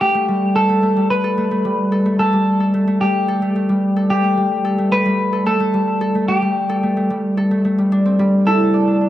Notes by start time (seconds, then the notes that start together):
Already playing: B3
0.01 A3 G4
0.15 A3
0.28 G3
0.56 A4
0.69 A3
0.83 A3
0.96 G3
1.10 B4
1.24 A4
1.38 A3
1.51 A3
1.65 G3
1.92 A4
2.05 A3
2.19 A3 A4
2.33 G3
2.60 A4
2.74 A3
2.87 A3
3.01 G3 G4
3.28 A4
3.42 A3
3.56 A3
3.69 G3
3.96 A4
4.10 A3 G4
4.24 A3
4.37 G3
4.65 A4
4.78 A3
4.92 A3 B4
5.05 G3
5.33 A4
5.46 A3 A4
5.60 A3
5.74 G3
6.01 A4
6.15 A3
6.28 A3 G4
6.42 G3
6.69 A4
6.83 A3
6.97 A3
7.10 G3
7.37 A4
7.51 A3
7.65 A3
7.78 G3
7.92 D4
8.06 C4
8.19 G3
8.46 E4 A4
8.60 A3
8.74 D5
8.87 D4
9.01 D4